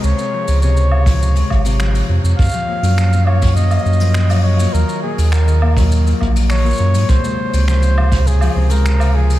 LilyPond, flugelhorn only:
\new Staff \with { instrumentName = "Flugelhorn" } { \time 4/4 \key des \major \tempo 4 = 102 des''4 des''2 r4 | f''4. des''8 ees''4. des''8 | bes'8 aes'8 bes'4 r4 des''4 | c''4 c''4 aes'8. bes'8. aes'8 | }